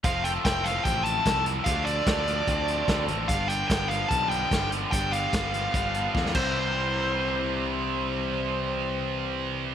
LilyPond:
<<
  \new Staff \with { instrumentName = "Lead electric guitar" } { \time 4/4 \key c \major \tempo 4 = 148 f''8 g''8 g''8 f''8 g''8 a''4 r8 | f''8 d''2. r8 | f''8 g''8 g''8 f''8 a''8 g''4 r8 | g''8 f''2. c''8~ |
c''1~ | c''1 | }
  \new Staff \with { instrumentName = "Overdriven electric guitar" } { \time 4/4 \key c \major f8 a'8 e'8 f8 c'8 e'8 a'8 e'8 | d8 a'8 d'8 f8 c'8 d'8 a'8 d'8 | g,8 g'8 b8 f8 g8 b8 g'8 b8 | g,8 g'8 b8 f8 g8 b8 g'8 <c e g c' e'>8~ |
<c e g c' e'>1~ | <c e g c' e'>1 | }
  \new Staff \with { instrumentName = "Distorted electric guitar" } { \clef bass \time 4/4 \key c \major <f, c f a c'>1 | <d f a d'>1 | <g, d g b d'>1 | <g, d g b d'>2.~ <g, d g b d'>8 <c g c' e'>8~ |
<c g c' e'>1~ | <c g c' e'>1 | }
  \new Staff \with { instrumentName = "Picked electric bass" } { \clef bass \time 4/4 \key c \major f,,4 f,,4 a,,4 c,4 | d,4 d,4 d,4 d,8 a,,8 | g,,4 g,,4 b,,4 g,,4 | g,,4 g,,4 g,,4 e,8 c,8~ |
c,1~ | c,1 | }
  \new DrumStaff \with { instrumentName = "Drums" } \drummode { \time 4/4 <hh bd>8 hh8 <hh bd sn>8 hh8 <hh bd>8 hh8 <hh bd sn>8 hh8 | <hh bd>8 hh8 <hh bd sn>8 hh8 <hh bd>8 hh8 <hh bd sn>8 hh8 | <hh bd>8 hh8 <hh bd sn>8 hh8 <hh bd>8 hh8 <hh bd sn>8 hh8 | <hh bd>8 hh8 <hh bd sn>8 hh8 <hh bd>8 hh8 <bd sn>16 sn16 <cymc bd>8 |
r4 r4 r4 r4 | r4 r4 r4 r4 | }
>>